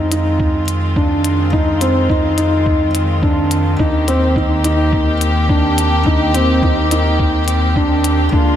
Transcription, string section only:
Already playing: D#3 G#3 C4 F4
3.79 A#3 G4
8.33 D3 G#3 A#3 F4

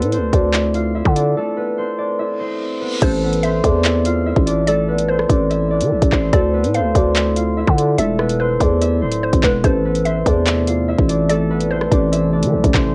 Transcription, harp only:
Already playing: A3 B3 D4 E4 A4 B4 D5 E5
0.12 C4 C5
0.33 D4 D5
0.54 E4 E5
0.74 F4 F5
0.95 E4 E5
1.16 D4 D5
1.37 A3 A4
1.57 B3 B4
1.78 C4 C5
1.98 D4 D5
2.19 E4 E5
2.40 C4 C5
2.81 B3 B4
3.02 A3 A4
3.23 B3 B4
3.44 C4 C5
3.65 D4 D5
3.85 E4 E5
4.05 F4 F5
4.26 E4 E5
4.46 D4 D5
4.68 A3 A4
4.88 B3 B4
5.10 C4 C5
5.30 D4 D5
5.50 E4 E5
5.71 D4 D5
6.13 C4 C5
6.33 A3 A4
6.53 B3 B4
6.74 C4 C5
6.95 D4 D5
7.16 E4 E5
7.36 F4 F5
7.57 E4 E5
7.78 D4 D5
7.99 A3 A4
8.19 B3 B4
8.40 C4 C5
8.61 D4 D5
8.81 E4 E5
9.02 C4 C5
9.43 B3 B4
9.64 A3 A4
9.85 B3 B4
10.05 C4 C5
10.26 D4 D5
10.47 E4 E5
10.67 F4 F5
10.88 E4 E5
11.08 D4 D5
11.30 A3 A4
11.50 B3 B4
11.72 C4 C5
11.92 D4 D5
12.12 E4 E5
12.33 D4 D5
12.75 C4 C5

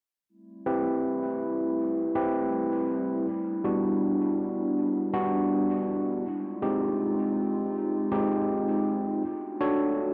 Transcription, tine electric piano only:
0.66 C4 E4 G4 B4
2.15 C4 E4 G4 B4
3.64 G3 B3 D4 F#4
5.13 G3 B3 D4 F#4
6.62 G#3 C4 D#4 G4
8.12 G#3 C4 D#4 G4
9.61 D4 F#4 A4 C#5

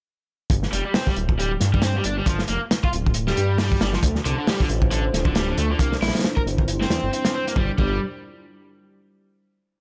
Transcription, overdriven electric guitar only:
0.72 G3
0.86 G3
0.95 C4
1.08 G3
1.39 G3
1.74 G3
1.83 C4
1.96 G3
2.05 D4
2.18 G3
2.27 F3
2.50 A#3
2.84 F4
3.28 G3
3.60 G3
3.82 G3
3.94 F3
4.25 D3
4.38 D3
4.48 G3
4.61 D3
4.92 D3
5.26 D3
5.36 G3
5.48 D3
5.58 A3
5.71 D3
5.80 A#3
6.03 E4
6.37 A#4
6.81 C4
7.13 C4
7.35 C4
7.47 A#3
7.57 G3
7.79 G3

